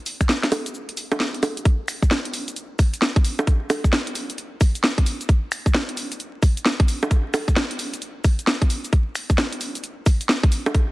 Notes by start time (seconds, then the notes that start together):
0.06 open hi-hat, shaker
0.21 finger snap, kick, closed hi-hat, shaker
0.29 snare, shaker
0.43 snare, closed hi-hat
0.52 open hi-hat, high bongo, shaker
0.66 closed hi-hat, shaker
0.74 shaker
0.89 closed hi-hat
0.97 open hi-hat, shaker
1.12 closed hi-hat, high bongo, shaker
1.20 snare, shaker
1.34 closed hi-hat
1.43 finger snap, open hi-hat, high bongo, shaker
1.57 closed hi-hat, shaker
1.65 kick, closed hi-hat, shaker
1.88 finger snap, open hi-hat, shaker
2.02 kick, shaker
2.11 snare, shaker
2.25 closed hi-hat
2.34 open hi-hat, shaker
2.48 closed hi-hat, shaker
2.56 closed hi-hat, shaker
2.79 finger snap, kick, open hi-hat, shaker
2.94 closed hi-hat, shaker
3.02 snare, shaker
3.16 kick, closed hi-hat
3.24 open hi-hat, shaker
3.39 high bongo, shaker
3.47 kick, closed hi-hat, shaker
3.70 finger snap, open hi-hat, high bongo, shaker
3.84 kick, shaker
3.93 snare, shaker
4.07 closed hi-hat
4.15 open hi-hat, shaker
4.30 closed hi-hat, shaker
4.38 closed hi-hat, shaker
4.61 finger snap, kick, open hi-hat, shaker
4.75 closed hi-hat, shaker
4.84 snare, shaker
4.98 kick, closed hi-hat
5.06 open hi-hat, shaker
5.21 closed hi-hat, shaker
5.29 kick, closed hi-hat, shaker
5.52 finger snap, open hi-hat, shaker
5.66 kick, shaker
5.74 snare, shaker
5.89 closed hi-hat
5.97 open hi-hat, shaker
6.12 closed hi-hat, shaker
6.20 closed hi-hat, shaker
6.43 finger snap, kick, open hi-hat, shaker
6.57 closed hi-hat, shaker
6.65 snare, shaker
6.80 kick, closed hi-hat
6.88 open hi-hat, shaker
7.03 high bongo, shaker
7.11 kick, closed hi-hat, shaker
7.34 finger snap, open hi-hat, high bongo, shaker
7.48 kick, shaker
7.56 snare, shaker
7.71 closed hi-hat
7.79 open hi-hat, shaker
7.94 closed hi-hat, shaker
8.02 closed hi-hat, shaker
8.24 finger snap, kick, open hi-hat, shaker
8.39 closed hi-hat, shaker
8.47 snare, shaker
8.62 kick, closed hi-hat
8.70 open hi-hat, shaker
8.84 closed hi-hat, shaker
8.93 kick, closed hi-hat, shaker
9.15 finger snap, open hi-hat, shaker
9.30 kick, shaker
9.38 snare, shaker
9.53 closed hi-hat
9.61 open hi-hat, shaker
9.75 closed hi-hat, shaker
9.84 closed hi-hat, shaker
10.06 finger snap, kick, open hi-hat, shaker
10.21 closed hi-hat, shaker
10.29 snare, shaker
10.43 kick, closed hi-hat
10.52 open hi-hat, shaker
10.66 closed hi-hat, high bongo, shaker
10.74 kick, closed hi-hat, shaker